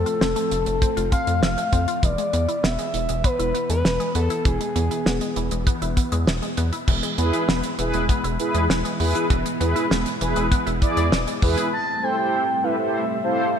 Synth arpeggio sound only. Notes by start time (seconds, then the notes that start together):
0.06 F4
0.21 C4
0.36 A3
0.51 F3
0.66 A3
0.82 C4
0.97 F4
1.12 C4
1.27 A3
1.42 F3
1.58 A3
1.73 C4
1.88 F4
2.03 E3
2.18 G#3
2.33 B3
2.48 E4
2.63 B3
2.79 G#3
2.94 E3
3.09 G#3
3.24 B3
3.39 E4
3.54 B3
3.70 G#3
3.85 E3
4.00 G#3
4.15 B3
4.30 E4
4.45 E3
4.61 G#3
4.76 B3
4.91 E4
5.06 B3
5.21 G#3
5.36 E3
5.52 G#3
5.67 B3
5.82 E4
5.97 B3
6.12 G#3
6.27 E3
6.42 G#3
6.58 B3
6.73 E4
6.88 E3
7.03 G#3
7.18 B3
7.33 E4
7.48 B3
7.79 E3
7.94 G#3
8.09 B3
8.24 E4
8.54 G#3
8.70 E3
8.85 G#3
9.00 B3
9.15 E4
9.30 E3
9.45 G#3
9.60 B3
9.76 E4
9.91 B3
10.21 E3
10.36 G#3
10.51 B3
10.66 E4
10.97 G#3
11.12 E3
11.27 G#3
11.42 B3
11.57 E4